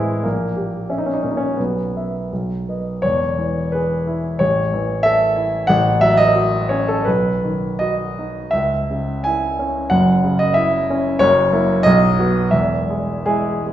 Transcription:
0.00 0.22 A2 medium
0.00 0.26 E3 soft
0.00 0.25 G#3 medium
0.00 0.27 C4 medium
0.00 0.27 E4 medium
0.00 0.28 F#4 soft
0.00 0.27 C5 soft
0.00 0.27 E5 soft
0.23 1.54 A#1 soft
0.23 0.87 A#3 medium
0.57 1.08 G4 soft
0.90 0.97 C#4 medium
0.90 1.20 C#5 soft
0.90 1.20 E5 soft
0.98 1.05 D#4 medium
1.06 1.13 C#4 medium
1.14 1.21 D#4 medium
1.23 1.59 A#2 soft
1.23 1.30 C#4 medium
1.31 1.38 D#4 medium
1.37 1.58 C#4 medium
1.57 2.29 B1 soft
1.57 2.30 B3 medium
1.97 2.28 B4 soft
1.97 2.28 E5 soft
2.33 3.02 B1 soft
2.68 3.00 B4 soft
2.68 3.01 D#5 soft
3.02 4.37 E1 soft
3.02 4.37 E2 soft
3.02 3.73 C#5 medium
3.39 3.94 E3 soft
3.72 4.28 G#4 soft
3.72 4.40 B4 medium
4.07 4.40 E4 soft
4.39 5.65 A1 medium
4.39 5.05 C#5 medium
4.74 5.25 E3 soft
5.03 5.56 A4 medium
5.03 5.68 E5 loud
5.36 5.69 E4 medium
5.67 7.02 A1 medium
5.67 6.01 F#5 loud
6.01 6.57 F#3 medium
6.01 6.19 E5 loud
6.17 6.70 D#5 loud
6.36 6.92 F#4 medium
6.69 7.06 C#4 medium
6.69 6.87 C#5 medium
6.88 7.06 A4 medium
7.05 8.48 B1 medium
7.05 7.79 B4 medium
7.44 8.02 D#3 soft
7.79 8.39 F#4 soft
7.79 8.52 D#5 medium
8.19 8.53 D#4 soft
8.51 9.88 C#2 medium
8.51 9.24 E5 medium
8.90 9.46 C#3 soft
9.24 9.79 E4 medium
9.24 9.91 G#5 medium
9.59 9.91 C#4 soft
9.90 11.17 F#1 medium
9.90 11.17 F#2 medium
9.90 10.39 F#5 medium
10.24 10.76 C#3 medium
10.39 10.56 D#5 medium
10.54 11.09 E4 medium
10.54 10.88 E5 medium
10.90 11.22 C#4 medium
11.19 11.83 F#1 medium
11.19 11.83 F#2 medium
11.19 11.85 C#5 loud
11.53 11.82 A#3 medium
11.53 11.82 E4 medium
11.83 12.51 B1 medium
11.83 12.52 D#5 loud
12.19 12.50 B3 medium
12.19 12.50 F#4 medium
12.51 13.73 E1 medium
12.51 13.73 E2 medium
12.51 13.26 E5 medium
12.90 13.25 G#3 medium
13.26 13.73 G#3 medium
13.26 13.73 E4 medium
13.26 13.65 G#4 medium
13.66 13.73 G#4 soft

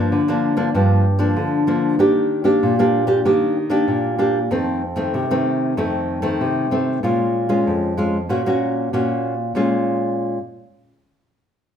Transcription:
0.00 0.21 F3 medium
0.00 0.22 A#3 medium
0.00 0.22 D4 medium
0.12 0.71 D3 medium
0.28 0.54 F3 medium
0.28 0.54 A#3 medium
0.28 0.55 D4 medium
0.57 0.68 F3 medium
0.57 0.68 A#3 medium
0.57 0.69 D4 medium
0.74 1.34 G2 medium
0.74 1.04 F3 medium
0.74 1.04 A#3 medium
0.74 1.04 D4 medium
1.19 1.62 F3 medium
1.19 1.63 A#3 medium
1.19 1.63 D4 medium
1.36 1.97 D3 medium
1.67 1.94 F3 medium
1.67 1.95 A#3 medium
1.67 1.95 D4 medium
1.99 2.59 D#3 medium
1.99 2.42 A#3 medium
1.99 2.42 D4 medium
1.99 2.42 G4 medium
2.44 2.72 A#3 medium
2.44 2.72 D4 medium
2.44 2.73 G4 medium
2.63 3.23 A#2 medium
2.79 3.05 A#3 medium
2.79 3.06 D4 medium
2.79 3.06 G4 medium
3.07 3.19 A#3 medium
3.07 3.19 D4 medium
3.07 3.20 G4 medium
3.25 3.85 D#3 medium
3.25 3.55 A#3 medium
3.25 3.55 D4 medium
3.25 3.55 G4 medium
3.70 4.13 A#3 medium
3.70 4.14 D4 medium
3.70 4.14 G4 medium
3.88 4.48 A#2 medium
4.18 4.38 A#3 medium
4.18 4.38 D4 medium
4.18 4.38 G4 medium
4.51 5.11 F2 medium
4.51 4.81 D#3 medium
4.51 4.81 A3 medium
4.51 4.81 C4 medium
4.96 5.24 D#3 medium
4.96 5.24 A3 medium
4.96 5.24 C4 medium
5.14 5.74 C3 medium
5.31 5.73 D#3 medium
5.31 5.73 A3 medium
5.31 5.73 C4 medium
5.77 6.37 F2 medium
5.77 6.20 D#3 medium
5.77 6.20 A3 medium
5.77 6.20 C4 medium
6.22 6.66 D#3 medium
6.22 6.66 A3 medium
6.22 6.66 C4 medium
6.41 7.01 C3 medium
6.71 6.98 D#3 medium
6.71 6.98 A3 medium
6.71 6.98 C4 medium
7.03 7.63 A#2 medium
7.03 7.46 G#3 soft
7.03 7.46 C#4 medium
7.03 7.46 F4 medium
7.49 7.92 G#3 medium
7.49 7.92 C#4 medium
7.49 7.92 F4 medium
7.67 8.27 F2 medium
7.97 8.16 G#3 medium
7.97 8.16 C#4 soft
7.97 8.17 F4 medium
8.29 8.89 A#2 medium
8.29 8.40 A#3 medium
8.29 8.40 C#4 medium
8.29 8.41 F#4 medium
8.46 8.88 A#3 medium
8.46 8.88 C#4 medium
8.46 8.88 F#4 medium
8.93 9.53 A#2 medium
8.93 9.33 A#3 medium
8.93 9.33 C#4 medium
8.93 9.34 F#4 medium
9.55 10.37 A#2 medium
9.55 10.37 G#3 medium
9.55 10.37 C#4 medium
9.55 10.37 F4 medium

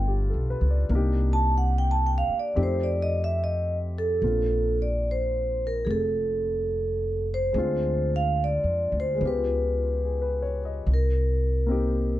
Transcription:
0.00 0.30 G1 medium
0.00 0.89 A3 medium
0.00 0.90 B3 soft
0.00 0.90 D4 soft
0.00 0.92 F4 medium
0.08 0.47 G4 soft
0.30 0.60 B1 medium
0.30 0.64 A4 soft
0.50 0.75 B4 soft
0.61 0.87 C#2 medium
0.70 0.99 D5 soft
0.89 2.25 C2 medium
0.89 2.56 A#3 medium
0.89 2.57 D4 soft
0.94 2.55 D#4 soft
0.94 2.55 G4 medium
1.33 1.52 A5 medium
1.58 1.72 F#5 medium
1.78 1.94 G5 medium
1.91 2.00 A5 medium
2.06 2.31 G5 medium
2.18 2.36 F5 medium
2.28 muted upright bass stroke soft
2.39 2.54 D5 medium
2.55 4.19 F2 medium
2.55 4.22 A3 soft
2.55 4.21 C4 soft
2.55 4.23 D#4 soft
2.55 4.23 G4 medium
2.63 2.87 C5 medium
2.84 3.11 D5 medium
3.02 3.20 D#5 medium
3.24 3.38 E5 medium
3.44 3.76 D#5 medium
3.98 4.76 A4 medium
4.22 5.84 A#1 medium
4.22 7.55 A#3 soft
4.22 7.53 C4 soft
4.22 7.55 D4 soft
4.22 7.55 F4 soft
4.82 5.08 D5 medium
5.11 5.66 C5 medium
5.67 5.87 A#4 medium
5.85 7.50 F1 medium
5.85 5.89 G#4 medium
5.91 7.25 A4 medium
7.34 8.10 C5 medium
7.53 8.61 D2 medium
7.53 9.13 G#3 soft
7.53 9.21 C4 soft
7.53 9.21 D4 soft
7.58 9.21 F4 medium
8.16 8.41 F5 medium
8.44 8.93 D5 medium
8.64 8.90 F2 medium
8.92 9.18 D2 medium
9.00 9.24 C5 medium
9.15 10.83 G#3 soft
9.15 10.85 B3 soft
9.21 10.83 C#2 medium
9.21 10.87 F4 soft
9.26 10.89 G4 soft
9.26 10.59 B4 medium
10.04 10.43 G#4 soft
10.22 10.59 B4 soft
10.42 10.69 C#5 soft
10.65 10.94 D#5 soft
10.87 12.20 C2 medium
10.94 12.20 A#4 medium
11.66 12.20 A#3 soft
11.66 12.20 C4 soft
11.66 12.20 D#4 soft
11.71 12.20 G4 medium

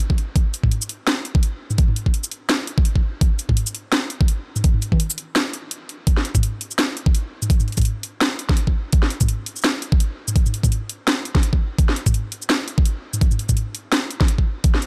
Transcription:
0.10 kick medium
0.18 closed hi-hat soft
0.36 kick loud
0.36 closed hi-hat medium
0.54 closed hi-hat medium
0.54 shaker soft
0.63 kick medium
0.63 mid tom medium
0.72 closed hi-hat medium
0.82 shaker medium
0.89 closed hi-hat medium
1.07 snare loud
1.07 closed hi-hat medium
1.25 closed hi-hat medium
1.35 kick loud
1.43 closed hi-hat medium
1.70 mid tom soft
1.70 shaker soft
1.78 kick loud
1.78 closed hi-hat medium
1.88 mid tom soft
1.96 closed hi-hat medium
2.06 kick medium
2.14 closed hi-hat medium
2.24 shaker medium
2.31 closed hi-hat medium
2.49 snare loud
2.49 closed hi-hat medium
2.67 closed hi-hat medium
2.78 kick loud
2.85 closed hi-hat medium
2.96 kick medium
3.21 kick loud
3.21 closed hi-hat medium
3.39 closed hi-hat medium
3.39 shaker soft
3.49 kick medium
3.49 mid tom medium
3.57 closed hi-hat medium
3.67 shaker medium
3.75 closed hi-hat medium
3.92 snare loud
3.92 closed hi-hat medium
4.10 closed hi-hat medium
4.21 kick loud
4.28 closed hi-hat medium
4.56 mid tom soft
4.56 shaker soft
4.64 kick loud
4.64 closed hi-hat medium
4.74 mid tom soft
4.82 closed hi-hat medium
4.82 shaker soft
4.92 kick medium
4.92 mid tom medium
5.00 closed hi-hat medium
5.10 shaker medium
5.18 closed hi-hat medium
5.36 snare loud
5.36 closed hi-hat medium
5.53 closed hi-hat medium
5.71 closed hi-hat medium
5.89 closed hi-hat soft
6.07 kick loud
6.07 closed hi-hat medium
6.17 snare soft
6.25 closed hi-hat medium
6.35 kick medium
6.35 mid tom medium
6.35 shaker medium
6.43 closed hi-hat medium
6.61 closed hi-hat medium
6.71 shaker soft
6.79 snare loud
6.79 closed hi-hat medium
6.97 closed hi-hat medium
7.06 kick loud
7.15 closed hi-hat medium
7.42 mid tom soft
7.42 shaker medium
7.50 kick loud
7.50 closed hi-hat medium
7.60 mid tom soft
7.60 shaker soft
7.68 closed hi-hat soft
7.72 closed hi-hat soft
7.77 kick medium
7.77 closed hi-hat soft
7.77 mid tom medium
7.77 shaker medium
7.82 closed hi-hat medium
7.85 closed hi-hat medium
8.03 closed hi-hat medium
8.21 snare loud
8.21 closed hi-hat medium
8.39 closed hi-hat medium
8.49 kick loud
8.49 snare soft
8.57 closed hi-hat medium
8.67 kick medium
8.92 kick loud
8.92 closed hi-hat medium
9.03 snare soft
9.10 closed hi-hat medium
9.21 kick medium
9.21 mid tom soft
9.21 shaker medium
9.29 closed hi-hat medium
9.46 closed hi-hat medium
9.56 shaker soft
9.58 shaker soft
9.62 snare loud
9.62 closed hi-hat medium
9.62 shaker soft
9.70 shaker soft
9.82 closed hi-hat medium
9.92 kick loud
10.00 closed hi-hat medium
10.28 mid tom soft
10.28 shaker medium
10.36 kick loud
10.36 closed hi-hat medium
10.46 mid tom soft
10.46 shaker soft
10.54 closed hi-hat medium
10.63 kick medium
10.63 mid tom soft
10.63 shaker medium
10.72 closed hi-hat medium
10.89 closed hi-hat medium
11.08 snare loud
11.08 closed hi-hat medium
11.25 closed hi-hat medium
11.35 kick loud
11.35 snare soft
11.43 closed hi-hat medium
11.53 kick medium
11.79 kick loud
11.79 closed hi-hat medium
11.89 snare soft
11.96 closed hi-hat medium
12.06 kick medium
12.06 mid tom soft
12.06 shaker medium
12.14 closed hi-hat medium
12.32 closed hi-hat medium
12.42 shaker soft
12.50 snare loud
12.50 closed hi-hat medium
12.68 closed hi-hat medium
12.78 kick loud
12.85 closed hi-hat medium
13.14 mid tom soft
13.14 shaker medium
13.21 kick loud
13.21 closed hi-hat medium
13.31 mid tom soft
13.31 shaker soft
13.39 closed hi-hat medium
13.49 kick medium
13.49 mid tom medium
13.49 shaker medium
13.57 closed hi-hat medium
13.75 closed hi-hat medium
13.92 snare loud
13.92 closed hi-hat medium
14.11 closed hi-hat medium
14.20 kick loud
14.20 snare soft
14.28 closed hi-hat medium
14.38 kick medium
14.64 kick loud
14.64 closed hi-hat medium
14.74 snare soft
14.82 closed hi-hat medium

